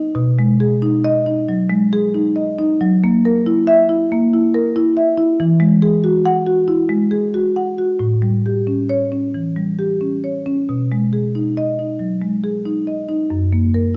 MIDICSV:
0, 0, Header, 1, 2, 480
1, 0, Start_track
1, 0, Key_signature, 5, "major"
1, 0, Tempo, 658617
1, 117, Time_signature, 4, 2, 24, 8
1, 2516, Tempo, 647948
1, 5396, Tempo, 668151
1, 8276, Tempo, 655022
1, 10195, End_track
2, 0, Start_track
2, 0, Title_t, "Marimba"
2, 0, Program_c, 0, 12
2, 0, Note_on_c, 0, 63, 55
2, 109, Note_on_c, 0, 47, 91
2, 113, Note_off_c, 0, 63, 0
2, 282, Note_on_c, 0, 56, 71
2, 439, Note_on_c, 0, 68, 75
2, 537, Note_off_c, 0, 56, 0
2, 599, Note_on_c, 0, 63, 75
2, 695, Note_off_c, 0, 68, 0
2, 762, Note_on_c, 0, 75, 95
2, 854, Note_off_c, 0, 63, 0
2, 921, Note_on_c, 0, 63, 69
2, 1014, Note_off_c, 0, 75, 0
2, 1044, Note_off_c, 0, 47, 0
2, 1083, Note_on_c, 0, 54, 69
2, 1173, Note_off_c, 0, 63, 0
2, 1236, Note_on_c, 0, 56, 69
2, 1333, Note_off_c, 0, 54, 0
2, 1405, Note_on_c, 0, 68, 79
2, 1490, Note_off_c, 0, 56, 0
2, 1563, Note_on_c, 0, 63, 71
2, 1655, Note_off_c, 0, 68, 0
2, 1719, Note_on_c, 0, 75, 69
2, 1815, Note_off_c, 0, 63, 0
2, 1883, Note_on_c, 0, 63, 80
2, 1974, Note_off_c, 0, 75, 0
2, 2040, Note_off_c, 0, 63, 0
2, 2046, Note_on_c, 0, 54, 92
2, 2213, Note_on_c, 0, 58, 75
2, 2371, Note_on_c, 0, 70, 78
2, 2461, Note_off_c, 0, 58, 0
2, 2525, Note_on_c, 0, 64, 80
2, 2620, Note_off_c, 0, 70, 0
2, 2680, Note_on_c, 0, 76, 100
2, 2779, Note_off_c, 0, 64, 0
2, 2842, Note_on_c, 0, 64, 71
2, 2936, Note_off_c, 0, 76, 0
2, 2975, Note_off_c, 0, 54, 0
2, 3010, Note_on_c, 0, 58, 77
2, 3096, Note_off_c, 0, 64, 0
2, 3170, Note_on_c, 0, 64, 74
2, 3259, Note_off_c, 0, 58, 0
2, 3325, Note_on_c, 0, 70, 83
2, 3419, Note_off_c, 0, 64, 0
2, 3485, Note_on_c, 0, 64, 83
2, 3576, Note_off_c, 0, 70, 0
2, 3639, Note_on_c, 0, 76, 80
2, 3736, Note_off_c, 0, 64, 0
2, 3792, Note_on_c, 0, 64, 85
2, 3893, Note_off_c, 0, 76, 0
2, 3954, Note_off_c, 0, 64, 0
2, 3958, Note_on_c, 0, 52, 101
2, 4107, Note_on_c, 0, 56, 80
2, 4273, Note_on_c, 0, 68, 80
2, 4365, Note_off_c, 0, 56, 0
2, 4431, Note_on_c, 0, 66, 82
2, 4527, Note_off_c, 0, 68, 0
2, 4592, Note_on_c, 0, 78, 107
2, 4686, Note_off_c, 0, 66, 0
2, 4747, Note_on_c, 0, 66, 76
2, 4847, Note_off_c, 0, 78, 0
2, 4883, Note_off_c, 0, 52, 0
2, 4905, Note_on_c, 0, 64, 74
2, 5006, Note_off_c, 0, 66, 0
2, 5064, Note_on_c, 0, 56, 67
2, 5167, Note_off_c, 0, 64, 0
2, 5226, Note_on_c, 0, 68, 72
2, 5328, Note_off_c, 0, 56, 0
2, 5397, Note_on_c, 0, 66, 72
2, 5489, Note_off_c, 0, 68, 0
2, 5556, Note_on_c, 0, 78, 69
2, 5651, Note_off_c, 0, 66, 0
2, 5714, Note_on_c, 0, 66, 65
2, 5811, Note_off_c, 0, 78, 0
2, 5866, Note_on_c, 0, 45, 80
2, 5874, Note_off_c, 0, 66, 0
2, 6029, Note_on_c, 0, 55, 65
2, 6200, Note_on_c, 0, 67, 62
2, 6291, Note_off_c, 0, 55, 0
2, 6352, Note_on_c, 0, 61, 63
2, 6457, Note_off_c, 0, 67, 0
2, 6513, Note_on_c, 0, 73, 80
2, 6612, Note_off_c, 0, 61, 0
2, 6675, Note_on_c, 0, 61, 54
2, 6772, Note_off_c, 0, 73, 0
2, 6806, Note_off_c, 0, 45, 0
2, 6836, Note_on_c, 0, 52, 55
2, 6932, Note_off_c, 0, 61, 0
2, 6993, Note_on_c, 0, 55, 58
2, 7093, Note_off_c, 0, 52, 0
2, 7154, Note_on_c, 0, 67, 64
2, 7252, Note_off_c, 0, 55, 0
2, 7314, Note_on_c, 0, 61, 56
2, 7412, Note_off_c, 0, 67, 0
2, 7478, Note_on_c, 0, 73, 57
2, 7573, Note_off_c, 0, 61, 0
2, 7638, Note_on_c, 0, 61, 62
2, 7736, Note_off_c, 0, 73, 0
2, 7799, Note_off_c, 0, 61, 0
2, 7803, Note_on_c, 0, 47, 68
2, 7965, Note_on_c, 0, 56, 58
2, 8118, Note_on_c, 0, 68, 53
2, 8217, Note_off_c, 0, 56, 0
2, 8278, Note_on_c, 0, 63, 56
2, 8373, Note_off_c, 0, 68, 0
2, 8440, Note_on_c, 0, 75, 74
2, 8535, Note_off_c, 0, 63, 0
2, 8600, Note_on_c, 0, 63, 50
2, 8696, Note_off_c, 0, 75, 0
2, 8732, Note_off_c, 0, 47, 0
2, 8749, Note_on_c, 0, 54, 56
2, 8857, Note_off_c, 0, 63, 0
2, 8911, Note_on_c, 0, 56, 53
2, 9011, Note_off_c, 0, 54, 0
2, 9073, Note_on_c, 0, 68, 57
2, 9171, Note_off_c, 0, 56, 0
2, 9233, Note_on_c, 0, 63, 59
2, 9332, Note_off_c, 0, 68, 0
2, 9393, Note_on_c, 0, 75, 55
2, 9492, Note_off_c, 0, 63, 0
2, 9549, Note_on_c, 0, 63, 60
2, 9652, Note_off_c, 0, 75, 0
2, 9709, Note_on_c, 0, 42, 68
2, 9714, Note_off_c, 0, 63, 0
2, 9871, Note_on_c, 0, 58, 58
2, 10031, Note_on_c, 0, 70, 54
2, 10130, Note_off_c, 0, 58, 0
2, 10195, Note_off_c, 0, 42, 0
2, 10195, Note_off_c, 0, 70, 0
2, 10195, End_track
0, 0, End_of_file